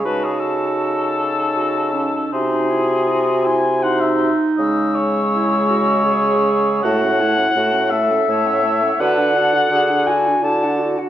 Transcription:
X:1
M:3/4
L:1/16
Q:1/4=81
K:C#m
V:1 name="Flute"
a12 | ^b8 b3 z | e'12 | [K:F#m] a f a f a f a f a f a f |
a f a f a f a f a f a f |]
V:2 name="Oboe"
B G A8- A2 | G6 g2 f e2 z | d2 c8- c2 | [K:F#m] f6 e6 |
f6 g2 a3 z |]
V:3 name="Clarinet"
F8 F2 C2 | D2 E2 F2 E2 D4- | D2 z2 E2 F2 G4 | [K:F#m] F2 E2 F2 A2 c4 |
B2 A2 G2 F2 E2 F2 |]
V:4 name="French horn"
D12 | F8 F3 z | G,12 | [K:F#m] A, C A, C A, C A, C A, C A, C |
F D F D F D F D F D F D |]
V:5 name="Bassoon" clef=bass
C,12 | ^B,,8- B,,2 z2 | C,12 | [K:F#m] A,,4 A,,4 A,,4 |
D,4 D,4 D,4 |]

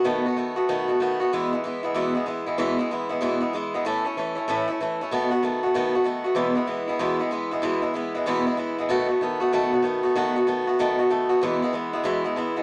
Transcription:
X:1
M:4/4
L:1/8
Q:"Swing" 1/4=190
K:E
V:1 name="Steel-string acoustic guitar"
[B,,D,A,B,F] [A,B,F] [D,A,B,F] [A,B,F] [B,,D,A,B,F] [A,B,F] [D,A,B,F] [A,B,F] | [E,,B,,E,G,B,E] [E,G,B,E] [E,G,B,E] [E,G,B,E] [E,,B,,E,G,B,E] [E,G,B,E] [E,G,B,E] [E,G,B,E] | [E,,B,,E,G,B,E] [E,G,B,E] [E,G,B,E] [E,G,B,E] [E,,B,,E,G,B,E] [E,G,B,E] [E,G,B,E] [E,G,B,E] | [A,,E,A,CE] [A,CE] [E,A,CE] [A,CE] [A,,E,A,CE] [A,CE] [E,A,CE] [A,CE] |
[B,,D,A,B,F] [A,B,F] [D,A,B,F] [A,B,F] [B,,D,A,B,F] [A,B,F] [D,A,B,F] [A,B,F] | [E,,B,,E,G,B,E] [E,G,B,E] [E,G,B,E] [E,G,B,E] [E,,B,,E,G,B,E] [E,G,B,E] [E,G,B,E] [E,G,B,E] | [E,,B,,E,G,B,E] [E,G,B,E] [E,G,B,E] [E,G,B,E] [E,,B,,E,G,B,E] [E,G,B,E] [E,G,B,E] [E,G,B,E] | [B,,D,A,B,F] [A,B,F] [D,A,B,F] [A,B,F] [B,,D,A,B,F] [A,B,F] [D,A,B,F] [A,B,F] |
[B,,D,A,B,F] [A,B,F] [D,A,B,F] [A,B,F] [B,,D,A,B,F] [A,B,F] [D,A,B,F] [A,B,F] | [E,,B,,E,G,B,E] [E,G,B,E] [E,G,B,E] [E,G,B,E] [E,,B,,E,G,B,E] [E,G,B,E] [E,G,B,E] [E,G,B,E] |]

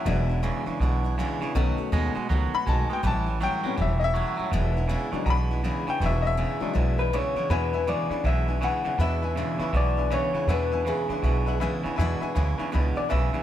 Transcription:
X:1
M:4/4
L:1/8
Q:"Swing" 1/4=161
K:Emix
V:1 name="Upright piano"
e3 z4 z | z4 z b a =g | a2 =g2 e [^de]3- | [^de]3 z [^ab]3 =g |
e [^de]6 z | [Beg] [Beg] [Beg] [Beb] [Beg] [Beg] [Beg] [Beg] | [Beb] [Beg] [Beg] [Beb] [Beg] [Beg] [Beg] [Beg] | [Beg] [Beg] [Bef] [Beg] [Bef] [Bef] [Beg] [Beg] |
[Beg] [Beg] [Beg] [Beg] [Beb] [Beg] [Beb] [Beg] |]
V:2 name="Upright piano" clef=bass
[F,G,D]8 | [^D,A,C]3 z4 z | z3 [=G,B,C] z4 | z3 [F,G,D] z4 |
z3 [F,G,D]4- [F,G,D] | z8 | z8 | z8 |
z8 |]
V:3 name="Clean electric guitar"
z8 | z8 | z8 | z8 |
z4 z B c2 | B2 d2 e2 f2 | e4 d2 c2 | B2 G4 z2 |
z4 z d e2 |]
V:4 name="Steel-string acoustic guitar" clef=bass
[E,,B,,E,G,DE] [E,G,DE] [E,,B,,E,G,DE] [E,G,DE] [E,G,DE] [E,G,DE] [E,,B,,E,G,DE] [E,G,DE] | [B,,^D,A,B,F] [A,B,F] [B,,D,A,B,F] [A,B,F] [D,A,B,F] [A,B,F] [B,,D,A,B,F] [A,B,F] | [A,,E,=G,CE] [G,CE] [A,,E,G,CE] [G,CE] [E,G,CE] [G,CE] [A,,E,G,CE] [G,CE] | [E,,B,,E,G,DE] [E,G,DE] [E,,B,,E,G,DE] [E,G,DE] [E,G,DE] [E,G,DE] [E,,B,,E,G,DE] [E,G,DE] |
[E,,B,,E,G,DE] [E,G,DE] [E,,B,,E,G,DE] [E,G,DE] [E,G,DE] [E,G,DE] [E,,B,,E,G,DE] [E,G,DE] | [E,,B,,E,G,DE] [E,G,DE] [E,,B,,E,G,DE] [E,G,DE] [E,G,DE] [E,G,DE] [E,,B,,E,G,DE] [E,G,DE] | [E,,B,,E,G,DE] [E,G,DE] [E,,B,,E,G,DE] [E,G,DE] [E,G,DE] [E,G,DE] [E,,B,,E,G,DE] [E,G,DE] | [E,,B,,E,G,DE] [E,G,DE] [E,,B,,E,G,DE] [E,G,DE] [E,G,DE] [E,G,DE] [E,,B,,E,G,DE] [E,G,DE] |
[E,,B,,E,G,DE] [E,G,DE] [E,,B,,E,G,DE] [E,G,DE] [E,G,DE] [E,G,DE] [E,,B,,E,G,DE] [E,G,DE] |]
V:5 name="Clean electric guitar" clef=bass
[E,,B,,]2 [E,,C,] [E,,C,] [E,,B,,]2 [E,,C,] [E,,C,] | [B,,F,]2 [B,,G,] [B,,G,] [B,,F,]2 [B,,G,] [B,,G,] | [A,,E,]2 [A,,F,] [A,,F,] [A,,E,]2 [A,,F,] [A,,F,] | [E,,B,,]2 [E,,C,] [E,,C,] [E,,B,,]2 [E,,C,] [E,,C,] |
[E,,B,,]2 [E,,C,] [E,,C,] [E,,B,,]2 [E,,C,] [E,,C,] | [E,,B,,]2 [E,,C,] [E,,C,] [E,,B,,]2 [E,,C,] [E,,C,] | [E,,B,,]2 [E,,C,] [E,,C,] [E,,B,,]2 [E,,C,] [E,,C,] | [E,,B,,]2 [E,,C,] [E,,C,] [E,,B,,]2 [E,,C,] [E,,C,] |
[E,,B,,]2 [E,,C,] [E,,C,] [E,,B,,]2 [E,,C,] [E,,C,] |]
V:6 name="Upright bass" clef=bass
E,,,3 z B,,,3 z | B,,, z ^D,, z C,, z B,,, z | A,,,3 z E,,,3 z | E,,,3 z B,,,3 z |
E,,,3 z B,,,3 z | E,,3 z B,,,3 z | E,,3 z B,,,3 z | E,,3 z B,,,3 z |
E,, z D,, z C,, z B,,, z |]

